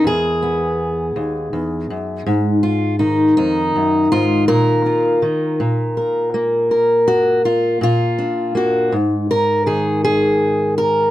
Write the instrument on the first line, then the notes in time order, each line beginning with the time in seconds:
steel-string acoustic guitar
0.04 E2 G#4
0.42 B3
1.16 D#2
1.53 E2
1.90 F#2
2.26 G#2
2.63 F4
2.99 D#3 D#4
3.37 F2 D#4
3.76 F#2
4.12 G#2 F4
4.48 A#2 A#4
4.86 F4
5.22 D#3
5.60 A#2
5.97 A#4
6.34 A#3
6.71 A#4
7.08 F#4
7.45 F4
7.81 A#2 F4
8.19 D4
8.55 A#3 F#4
8.92 G#2
9.31 A#4
9.66 D#3 G#4
10.04 G#4
10.78 A#4